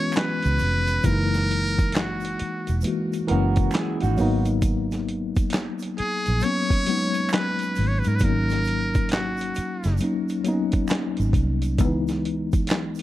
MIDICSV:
0, 0, Header, 1, 7, 480
1, 0, Start_track
1, 0, Tempo, 895522
1, 559, Time_signature, 4, 2, 24, 8
1, 6981, End_track
2, 0, Start_track
2, 0, Title_t, "Muted trumpet"
2, 0, Program_c, 0, 59
2, 0, Note_on_c, 0, 73, 119
2, 85, Note_off_c, 0, 73, 0
2, 89, Note_on_c, 0, 71, 104
2, 564, Note_on_c, 0, 70, 114
2, 572, Note_off_c, 0, 71, 0
2, 1048, Note_on_c, 0, 66, 83
2, 1056, Note_off_c, 0, 70, 0
2, 1523, Note_off_c, 0, 66, 0
2, 3210, Note_on_c, 0, 68, 104
2, 3451, Note_on_c, 0, 73, 123
2, 3459, Note_off_c, 0, 68, 0
2, 3925, Note_off_c, 0, 73, 0
2, 3929, Note_on_c, 0, 71, 100
2, 4222, Note_on_c, 0, 73, 86
2, 4230, Note_off_c, 0, 71, 0
2, 4284, Note_on_c, 0, 71, 80
2, 4292, Note_off_c, 0, 73, 0
2, 4330, Note_on_c, 0, 70, 82
2, 4338, Note_off_c, 0, 71, 0
2, 4371, Note_on_c, 0, 71, 88
2, 4379, Note_off_c, 0, 70, 0
2, 4416, Note_on_c, 0, 70, 109
2, 4424, Note_off_c, 0, 71, 0
2, 4887, Note_off_c, 0, 70, 0
2, 4889, Note_on_c, 0, 66, 78
2, 5343, Note_off_c, 0, 66, 0
2, 6981, End_track
3, 0, Start_track
3, 0, Title_t, "Clean electric guitar"
3, 0, Program_c, 1, 27
3, 1760, Note_on_c, 1, 70, 77
3, 1763, Note_on_c, 1, 66, 70
3, 1987, Note_off_c, 1, 70, 0
3, 1989, Note_off_c, 1, 66, 0
3, 2003, Note_on_c, 1, 68, 83
3, 2008, Note_on_c, 1, 64, 68
3, 2143, Note_off_c, 1, 68, 0
3, 2145, Note_off_c, 1, 64, 0
3, 2152, Note_on_c, 1, 66, 77
3, 2156, Note_on_c, 1, 63, 60
3, 2378, Note_off_c, 1, 66, 0
3, 2380, Note_off_c, 1, 63, 0
3, 6981, End_track
4, 0, Start_track
4, 0, Title_t, "Tine electric piano"
4, 0, Program_c, 2, 4
4, 0, Control_c, 2, 64, 127
4, 0, Note_on_c, 2, 52, 65
4, 0, Note_on_c, 2, 56, 65
4, 0, Note_on_c, 2, 59, 66
4, 0, Note_on_c, 2, 61, 76
4, 0, Note_on_c, 2, 66, 70
4, 501, Note_off_c, 2, 52, 0
4, 503, Note_off_c, 2, 56, 0
4, 507, Note_off_c, 2, 59, 0
4, 511, Note_off_c, 2, 61, 0
4, 557, Note_on_c, 2, 52, 78
4, 563, Note_on_c, 2, 56, 67
4, 566, Control_c, 2, 64, 0
4, 569, Note_off_c, 2, 66, 0
4, 571, Note_on_c, 2, 58, 71
4, 580, Note_on_c, 2, 63, 83
4, 670, Control_c, 2, 64, 127
4, 1441, Note_off_c, 2, 52, 0
4, 1444, Note_off_c, 2, 56, 0
4, 1448, Note_off_c, 2, 58, 0
4, 1452, Note_off_c, 2, 63, 0
4, 1515, Note_on_c, 2, 52, 62
4, 1522, Note_on_c, 2, 56, 59
4, 1529, Note_on_c, 2, 58, 61
4, 1539, Note_on_c, 2, 66, 68
4, 1738, Note_off_c, 2, 52, 0
4, 1741, Note_off_c, 2, 56, 0
4, 1744, Note_off_c, 2, 58, 0
4, 1750, Note_off_c, 2, 66, 0
4, 1755, Note_on_c, 2, 52, 87
4, 1764, Note_on_c, 2, 56, 72
4, 1769, Note_on_c, 2, 58, 69
4, 1778, Note_on_c, 2, 61, 90
4, 2237, Note_off_c, 2, 52, 0
4, 2237, Note_off_c, 2, 58, 0
4, 2237, Note_on_c, 2, 54, 100
4, 2241, Note_off_c, 2, 56, 0
4, 2244, Note_on_c, 2, 58, 96
4, 2246, Control_c, 2, 64, 0
4, 2249, Note_off_c, 2, 61, 0
4, 2252, Note_on_c, 2, 59, 92
4, 2258, Note_on_c, 2, 63, 109
4, 2342, Control_c, 2, 64, 127
4, 3121, Note_off_c, 2, 54, 0
4, 3124, Note_off_c, 2, 58, 0
4, 3128, Note_off_c, 2, 59, 0
4, 3131, Note_off_c, 2, 63, 0
4, 3437, Note_on_c, 2, 54, 65
4, 3444, Note_on_c, 2, 58, 60
4, 3453, Note_on_c, 2, 59, 55
4, 3460, Note_on_c, 2, 61, 74
4, 3659, Note_off_c, 2, 54, 0
4, 3662, Note_off_c, 2, 58, 0
4, 3667, Note_off_c, 2, 59, 0
4, 3670, Note_off_c, 2, 61, 0
4, 3680, Note_on_c, 2, 54, 70
4, 3686, Note_on_c, 2, 56, 66
4, 3695, Note_on_c, 2, 59, 63
4, 3702, Note_on_c, 2, 63, 70
4, 4342, Note_off_c, 2, 54, 0
4, 4344, Note_off_c, 2, 56, 0
4, 4349, Note_off_c, 2, 59, 0
4, 4352, Note_off_c, 2, 63, 0
4, 4400, Note_on_c, 2, 54, 69
4, 4405, Note_on_c, 2, 58, 66
4, 4406, Control_c, 2, 64, 0
4, 4414, Note_on_c, 2, 59, 51
4, 4420, Note_on_c, 2, 63, 78
4, 4448, Note_on_c, 2, 61, 63
4, 4449, Note_off_c, 2, 59, 0
4, 4504, Control_c, 2, 64, 127
4, 5282, Note_off_c, 2, 54, 0
4, 5285, Note_off_c, 2, 58, 0
4, 5292, Note_off_c, 2, 63, 0
4, 5306, Note_off_c, 2, 61, 0
4, 5359, Note_on_c, 2, 54, 61
4, 5366, Note_on_c, 2, 58, 60
4, 5374, Note_on_c, 2, 61, 62
4, 5380, Note_on_c, 2, 63, 69
4, 5579, Note_off_c, 2, 54, 0
4, 5583, Note_off_c, 2, 58, 0
4, 5587, Note_off_c, 2, 61, 0
4, 5590, Note_off_c, 2, 63, 0
4, 5596, Note_on_c, 2, 54, 74
4, 5604, Note_on_c, 2, 58, 64
4, 5610, Note_on_c, 2, 59, 58
4, 5618, Note_on_c, 2, 63, 91
4, 5645, Note_on_c, 2, 61, 72
4, 5648, Note_off_c, 2, 59, 0
4, 6259, Note_off_c, 2, 54, 0
4, 6263, Note_off_c, 2, 58, 0
4, 6271, Note_off_c, 2, 63, 0
4, 6284, Note_off_c, 2, 61, 0
4, 6316, Note_on_c, 2, 51, 67
4, 6325, Note_on_c, 2, 56, 81
4, 6326, Control_c, 2, 64, 0
4, 6331, Note_on_c, 2, 59, 76
4, 6339, Note_on_c, 2, 63, 86
4, 6352, Note_on_c, 2, 52, 89
4, 6361, Note_off_c, 2, 51, 0
4, 6434, Control_c, 2, 64, 127
4, 6981, Note_off_c, 2, 52, 0
4, 6981, Note_off_c, 2, 56, 0
4, 6981, Note_off_c, 2, 59, 0
4, 6981, Note_off_c, 2, 63, 0
4, 6981, End_track
5, 0, Start_track
5, 0, Title_t, "Fingered electric bass"
5, 0, Program_c, 3, 33
5, 244, Note_on_c, 3, 37, 97
5, 313, Note_off_c, 3, 37, 0
5, 331, Note_on_c, 3, 29, 82
5, 526, Note_off_c, 3, 29, 0
5, 565, Note_on_c, 3, 30, 105
5, 1260, Note_off_c, 3, 30, 0
5, 1443, Note_on_c, 3, 28, 90
5, 1512, Note_off_c, 3, 28, 0
5, 1774, Note_on_c, 3, 30, 94
5, 1968, Note_off_c, 3, 30, 0
5, 2161, Note_on_c, 3, 32, 92
5, 2231, Note_off_c, 3, 32, 0
5, 2252, Note_on_c, 3, 32, 100
5, 3047, Note_off_c, 3, 32, 0
5, 3367, Note_on_c, 3, 34, 93
5, 3435, Note_off_c, 3, 34, 0
5, 4174, Note_on_c, 3, 32, 82
5, 4292, Note_off_c, 3, 32, 0
5, 4324, Note_on_c, 3, 44, 88
5, 4406, Note_on_c, 3, 32, 99
5, 4414, Note_off_c, 3, 44, 0
5, 5101, Note_off_c, 3, 32, 0
5, 5282, Note_on_c, 3, 30, 83
5, 5351, Note_off_c, 3, 30, 0
5, 6001, Note_on_c, 3, 32, 85
5, 6071, Note_off_c, 3, 32, 0
5, 6081, Note_on_c, 3, 36, 90
5, 6325, Note_off_c, 3, 36, 0
5, 6325, Note_on_c, 3, 37, 93
5, 6981, Note_off_c, 3, 37, 0
5, 6981, End_track
6, 0, Start_track
6, 0, Title_t, "Muted fingered electric bass strokes"
6, 1294, Note_on_c, 9, 29, 48
6, 1347, Note_off_c, 9, 29, 0
6, 3215, Note_on_c, 9, 29, 45
6, 3269, Note_off_c, 9, 29, 0
6, 5135, Note_on_c, 9, 29, 44
6, 5188, Note_off_c, 9, 29, 0
6, 6981, End_track
7, 0, Start_track
7, 0, Title_t, "Drums"
7, 65, Note_on_c, 9, 26, 59
7, 65, Note_on_c, 9, 82, 64
7, 88, Note_on_c, 9, 42, 92
7, 91, Note_on_c, 9, 39, 81
7, 92, Note_on_c, 9, 38, 109
7, 119, Note_off_c, 9, 26, 0
7, 119, Note_off_c, 9, 82, 0
7, 142, Note_off_c, 9, 42, 0
7, 144, Note_off_c, 9, 39, 0
7, 145, Note_off_c, 9, 38, 0
7, 228, Note_on_c, 9, 42, 43
7, 238, Note_on_c, 9, 82, 45
7, 281, Note_off_c, 9, 42, 0
7, 291, Note_off_c, 9, 82, 0
7, 315, Note_on_c, 9, 82, 47
7, 320, Note_on_c, 9, 46, 38
7, 369, Note_off_c, 9, 82, 0
7, 374, Note_off_c, 9, 46, 0
7, 467, Note_on_c, 9, 82, 48
7, 469, Note_on_c, 9, 42, 48
7, 521, Note_off_c, 9, 82, 0
7, 523, Note_off_c, 9, 42, 0
7, 554, Note_on_c, 9, 82, 82
7, 557, Note_on_c, 9, 36, 106
7, 558, Note_on_c, 9, 42, 90
7, 608, Note_off_c, 9, 82, 0
7, 611, Note_off_c, 9, 36, 0
7, 612, Note_off_c, 9, 42, 0
7, 718, Note_on_c, 9, 82, 45
7, 720, Note_on_c, 9, 42, 43
7, 724, Note_on_c, 9, 38, 31
7, 772, Note_off_c, 9, 82, 0
7, 774, Note_off_c, 9, 42, 0
7, 778, Note_off_c, 9, 38, 0
7, 810, Note_on_c, 9, 42, 59
7, 863, Note_off_c, 9, 42, 0
7, 956, Note_on_c, 9, 82, 50
7, 957, Note_on_c, 9, 36, 83
7, 959, Note_on_c, 9, 42, 41
7, 1010, Note_off_c, 9, 82, 0
7, 1011, Note_off_c, 9, 36, 0
7, 1013, Note_off_c, 9, 42, 0
7, 1031, Note_on_c, 9, 42, 84
7, 1043, Note_on_c, 9, 26, 53
7, 1043, Note_on_c, 9, 82, 51
7, 1052, Note_on_c, 9, 39, 95
7, 1053, Note_on_c, 9, 38, 110
7, 1085, Note_off_c, 9, 42, 0
7, 1097, Note_off_c, 9, 26, 0
7, 1097, Note_off_c, 9, 82, 0
7, 1105, Note_off_c, 9, 39, 0
7, 1107, Note_off_c, 9, 38, 0
7, 1181, Note_on_c, 9, 82, 43
7, 1205, Note_on_c, 9, 42, 54
7, 1235, Note_off_c, 9, 82, 0
7, 1258, Note_off_c, 9, 42, 0
7, 1283, Note_on_c, 9, 42, 73
7, 1337, Note_off_c, 9, 42, 0
7, 1432, Note_on_c, 9, 42, 45
7, 1434, Note_on_c, 9, 82, 47
7, 1485, Note_off_c, 9, 42, 0
7, 1488, Note_off_c, 9, 82, 0
7, 1506, Note_on_c, 9, 82, 73
7, 1524, Note_on_c, 9, 42, 70
7, 1560, Note_off_c, 9, 82, 0
7, 1578, Note_off_c, 9, 42, 0
7, 1676, Note_on_c, 9, 82, 43
7, 1680, Note_on_c, 9, 42, 40
7, 1730, Note_off_c, 9, 82, 0
7, 1734, Note_off_c, 9, 42, 0
7, 1760, Note_on_c, 9, 42, 73
7, 1814, Note_off_c, 9, 42, 0
7, 1908, Note_on_c, 9, 42, 48
7, 1910, Note_on_c, 9, 82, 42
7, 1914, Note_on_c, 9, 36, 84
7, 1961, Note_off_c, 9, 42, 0
7, 1963, Note_off_c, 9, 82, 0
7, 1967, Note_off_c, 9, 36, 0
7, 1988, Note_on_c, 9, 26, 58
7, 1988, Note_on_c, 9, 82, 60
7, 2007, Note_on_c, 9, 42, 93
7, 2009, Note_on_c, 9, 39, 84
7, 2010, Note_on_c, 9, 38, 107
7, 2042, Note_off_c, 9, 26, 0
7, 2042, Note_off_c, 9, 82, 0
7, 2060, Note_off_c, 9, 42, 0
7, 2063, Note_off_c, 9, 39, 0
7, 2064, Note_off_c, 9, 38, 0
7, 2147, Note_on_c, 9, 42, 45
7, 2160, Note_on_c, 9, 82, 51
7, 2200, Note_off_c, 9, 42, 0
7, 2213, Note_off_c, 9, 82, 0
7, 2237, Note_on_c, 9, 82, 47
7, 2239, Note_on_c, 9, 46, 43
7, 2290, Note_off_c, 9, 82, 0
7, 2292, Note_off_c, 9, 46, 0
7, 2386, Note_on_c, 9, 82, 48
7, 2388, Note_on_c, 9, 42, 51
7, 2440, Note_off_c, 9, 82, 0
7, 2441, Note_off_c, 9, 42, 0
7, 2477, Note_on_c, 9, 36, 108
7, 2477, Note_on_c, 9, 42, 89
7, 2477, Note_on_c, 9, 82, 71
7, 2530, Note_off_c, 9, 36, 0
7, 2530, Note_off_c, 9, 82, 0
7, 2531, Note_off_c, 9, 42, 0
7, 2634, Note_on_c, 9, 82, 45
7, 2638, Note_on_c, 9, 42, 40
7, 2642, Note_on_c, 9, 38, 32
7, 2688, Note_off_c, 9, 82, 0
7, 2691, Note_off_c, 9, 42, 0
7, 2696, Note_off_c, 9, 38, 0
7, 2726, Note_on_c, 9, 42, 60
7, 2779, Note_off_c, 9, 42, 0
7, 2873, Note_on_c, 9, 82, 53
7, 2875, Note_on_c, 9, 42, 41
7, 2876, Note_on_c, 9, 36, 79
7, 2927, Note_off_c, 9, 82, 0
7, 2929, Note_off_c, 9, 42, 0
7, 2930, Note_off_c, 9, 36, 0
7, 2948, Note_on_c, 9, 42, 87
7, 2963, Note_on_c, 9, 26, 49
7, 2963, Note_on_c, 9, 82, 55
7, 2969, Note_on_c, 9, 39, 86
7, 2971, Note_on_c, 9, 38, 109
7, 3002, Note_off_c, 9, 42, 0
7, 3016, Note_off_c, 9, 26, 0
7, 3016, Note_off_c, 9, 82, 0
7, 3023, Note_off_c, 9, 39, 0
7, 3024, Note_off_c, 9, 38, 0
7, 3103, Note_on_c, 9, 82, 46
7, 3122, Note_on_c, 9, 42, 51
7, 3157, Note_off_c, 9, 82, 0
7, 3176, Note_off_c, 9, 42, 0
7, 3205, Note_on_c, 9, 42, 65
7, 3259, Note_off_c, 9, 42, 0
7, 3354, Note_on_c, 9, 42, 45
7, 3355, Note_on_c, 9, 82, 45
7, 3408, Note_off_c, 9, 42, 0
7, 3408, Note_off_c, 9, 82, 0
7, 3432, Note_on_c, 9, 82, 70
7, 3445, Note_on_c, 9, 42, 70
7, 3486, Note_off_c, 9, 82, 0
7, 3498, Note_off_c, 9, 42, 0
7, 3593, Note_on_c, 9, 36, 82
7, 3598, Note_on_c, 9, 82, 41
7, 3599, Note_on_c, 9, 42, 48
7, 3647, Note_off_c, 9, 36, 0
7, 3652, Note_off_c, 9, 82, 0
7, 3653, Note_off_c, 9, 42, 0
7, 3679, Note_on_c, 9, 42, 69
7, 3733, Note_off_c, 9, 42, 0
7, 3827, Note_on_c, 9, 82, 48
7, 3828, Note_on_c, 9, 42, 44
7, 3881, Note_off_c, 9, 82, 0
7, 3882, Note_off_c, 9, 42, 0
7, 3907, Note_on_c, 9, 26, 63
7, 3907, Note_on_c, 9, 82, 59
7, 3930, Note_on_c, 9, 42, 100
7, 3932, Note_on_c, 9, 39, 94
7, 3934, Note_on_c, 9, 38, 110
7, 3960, Note_off_c, 9, 26, 0
7, 3960, Note_off_c, 9, 82, 0
7, 3983, Note_off_c, 9, 42, 0
7, 3986, Note_off_c, 9, 39, 0
7, 3987, Note_off_c, 9, 38, 0
7, 4068, Note_on_c, 9, 42, 45
7, 4080, Note_on_c, 9, 82, 46
7, 4121, Note_off_c, 9, 42, 0
7, 4134, Note_off_c, 9, 82, 0
7, 4155, Note_on_c, 9, 82, 49
7, 4162, Note_on_c, 9, 46, 45
7, 4209, Note_off_c, 9, 82, 0
7, 4215, Note_off_c, 9, 46, 0
7, 4308, Note_on_c, 9, 82, 49
7, 4313, Note_on_c, 9, 42, 48
7, 4361, Note_off_c, 9, 82, 0
7, 4366, Note_off_c, 9, 42, 0
7, 4391, Note_on_c, 9, 82, 78
7, 4398, Note_on_c, 9, 36, 98
7, 4401, Note_on_c, 9, 42, 91
7, 4445, Note_off_c, 9, 82, 0
7, 4452, Note_off_c, 9, 36, 0
7, 4455, Note_off_c, 9, 42, 0
7, 4552, Note_on_c, 9, 82, 43
7, 4564, Note_on_c, 9, 42, 45
7, 4568, Note_on_c, 9, 38, 29
7, 4606, Note_off_c, 9, 82, 0
7, 4618, Note_off_c, 9, 42, 0
7, 4622, Note_off_c, 9, 38, 0
7, 4633, Note_on_c, 9, 82, 52
7, 4649, Note_on_c, 9, 42, 59
7, 4686, Note_off_c, 9, 82, 0
7, 4703, Note_off_c, 9, 42, 0
7, 4793, Note_on_c, 9, 82, 48
7, 4797, Note_on_c, 9, 36, 88
7, 4798, Note_on_c, 9, 42, 41
7, 4847, Note_off_c, 9, 82, 0
7, 4851, Note_off_c, 9, 36, 0
7, 4852, Note_off_c, 9, 42, 0
7, 4872, Note_on_c, 9, 42, 78
7, 4886, Note_on_c, 9, 26, 57
7, 4886, Note_on_c, 9, 82, 53
7, 4893, Note_on_c, 9, 39, 91
7, 4894, Note_on_c, 9, 38, 105
7, 4926, Note_off_c, 9, 42, 0
7, 4939, Note_off_c, 9, 26, 0
7, 4939, Note_off_c, 9, 82, 0
7, 4946, Note_off_c, 9, 39, 0
7, 4948, Note_off_c, 9, 38, 0
7, 5024, Note_on_c, 9, 82, 44
7, 5045, Note_on_c, 9, 42, 51
7, 5077, Note_off_c, 9, 82, 0
7, 5098, Note_off_c, 9, 42, 0
7, 5119, Note_on_c, 9, 82, 52
7, 5125, Note_on_c, 9, 42, 74
7, 5173, Note_off_c, 9, 82, 0
7, 5178, Note_off_c, 9, 42, 0
7, 5273, Note_on_c, 9, 42, 45
7, 5273, Note_on_c, 9, 82, 47
7, 5284, Note_on_c, 9, 38, 35
7, 5326, Note_off_c, 9, 82, 0
7, 5327, Note_off_c, 9, 42, 0
7, 5338, Note_off_c, 9, 38, 0
7, 5346, Note_on_c, 9, 82, 71
7, 5363, Note_on_c, 9, 42, 67
7, 5400, Note_off_c, 9, 82, 0
7, 5417, Note_off_c, 9, 42, 0
7, 5514, Note_on_c, 9, 82, 42
7, 5520, Note_on_c, 9, 42, 38
7, 5567, Note_off_c, 9, 82, 0
7, 5574, Note_off_c, 9, 42, 0
7, 5599, Note_on_c, 9, 42, 68
7, 5604, Note_on_c, 9, 82, 40
7, 5652, Note_off_c, 9, 42, 0
7, 5657, Note_off_c, 9, 82, 0
7, 5745, Note_on_c, 9, 42, 49
7, 5746, Note_on_c, 9, 82, 44
7, 5753, Note_on_c, 9, 36, 72
7, 5799, Note_off_c, 9, 42, 0
7, 5800, Note_off_c, 9, 82, 0
7, 5807, Note_off_c, 9, 36, 0
7, 5830, Note_on_c, 9, 26, 64
7, 5830, Note_on_c, 9, 82, 59
7, 5845, Note_on_c, 9, 42, 91
7, 5848, Note_on_c, 9, 39, 84
7, 5849, Note_on_c, 9, 38, 113
7, 5884, Note_off_c, 9, 26, 0
7, 5884, Note_off_c, 9, 82, 0
7, 5899, Note_off_c, 9, 42, 0
7, 5901, Note_off_c, 9, 39, 0
7, 5902, Note_off_c, 9, 38, 0
7, 5986, Note_on_c, 9, 42, 44
7, 6003, Note_on_c, 9, 82, 47
7, 6040, Note_off_c, 9, 42, 0
7, 6056, Note_off_c, 9, 82, 0
7, 6074, Note_on_c, 9, 36, 81
7, 6079, Note_on_c, 9, 42, 60
7, 6081, Note_on_c, 9, 82, 48
7, 6127, Note_off_c, 9, 36, 0
7, 6132, Note_off_c, 9, 42, 0
7, 6135, Note_off_c, 9, 82, 0
7, 6227, Note_on_c, 9, 42, 50
7, 6231, Note_on_c, 9, 82, 44
7, 6281, Note_off_c, 9, 42, 0
7, 6285, Note_off_c, 9, 82, 0
7, 6316, Note_on_c, 9, 42, 85
7, 6317, Note_on_c, 9, 36, 110
7, 6319, Note_on_c, 9, 82, 74
7, 6370, Note_off_c, 9, 36, 0
7, 6370, Note_off_c, 9, 42, 0
7, 6372, Note_off_c, 9, 82, 0
7, 6474, Note_on_c, 9, 82, 40
7, 6479, Note_on_c, 9, 42, 45
7, 6483, Note_on_c, 9, 38, 31
7, 6527, Note_off_c, 9, 82, 0
7, 6532, Note_off_c, 9, 42, 0
7, 6536, Note_off_c, 9, 38, 0
7, 6568, Note_on_c, 9, 42, 54
7, 6621, Note_off_c, 9, 42, 0
7, 6713, Note_on_c, 9, 82, 51
7, 6717, Note_on_c, 9, 36, 79
7, 6717, Note_on_c, 9, 42, 44
7, 6766, Note_off_c, 9, 82, 0
7, 6770, Note_off_c, 9, 36, 0
7, 6770, Note_off_c, 9, 42, 0
7, 6792, Note_on_c, 9, 42, 80
7, 6801, Note_on_c, 9, 26, 57
7, 6801, Note_on_c, 9, 82, 58
7, 6813, Note_on_c, 9, 39, 92
7, 6814, Note_on_c, 9, 38, 112
7, 6846, Note_off_c, 9, 42, 0
7, 6854, Note_off_c, 9, 26, 0
7, 6854, Note_off_c, 9, 82, 0
7, 6866, Note_off_c, 9, 39, 0
7, 6868, Note_off_c, 9, 38, 0
7, 6941, Note_on_c, 9, 82, 44
7, 6963, Note_on_c, 9, 42, 52
7, 6981, Note_off_c, 9, 42, 0
7, 6981, Note_off_c, 9, 82, 0
7, 6981, End_track
0, 0, End_of_file